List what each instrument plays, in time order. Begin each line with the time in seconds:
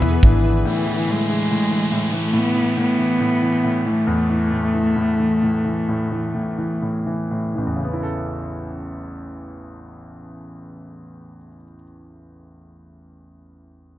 Already playing: fingered electric bass E2, steel-string acoustic guitar E2 B3 E4, ambient pad D3 G#4 B4 E5, grand piano E3 B3, cello B3
0.02 grand piano E3, floor tom, shaker
0.23 fingered electric bass G#1, grand piano E3, steel-string acoustic guitar D4, kick, shaker
0.44 grand piano E3, shaker
0.65 grand piano A2, cello E3, downlifter
0.86 grand piano E3
1.08 grand piano A2, cello G#3
1.29 grand piano E3
1.51 grand piano A2
1.71 grand piano E3
1.92 grand piano A2
2.13 grand piano E3, cello A3
2.33 grand piano A2
2.38 cello B3
2.56 grand piano E3
2.77 grand piano A2, cello B3
2.99 grand piano E3
3.20 grand piano A2
3.42 grand piano E3
3.64 grand piano A2
3.86 grand piano E3, cello A3
4.07 grand piano E2
4.30 grand piano E3
4.51 grand piano A2
4.74 grand piano E3
4.96 grand piano A2
5.19 grand piano E3
5.42 grand piano A2
5.65 grand piano E3
5.89 grand piano A2
6.12 grand piano E3
6.35 grand piano A2
6.58 grand piano E3
6.82 grand piano A2
7.07 grand piano E3
7.31 grand piano A2
7.55 grand piano A1 E3
7.67 grand piano E2
7.75 grand piano C#3
7.84 grand piano B3
7.93 grand piano E4
8.03 grand piano A4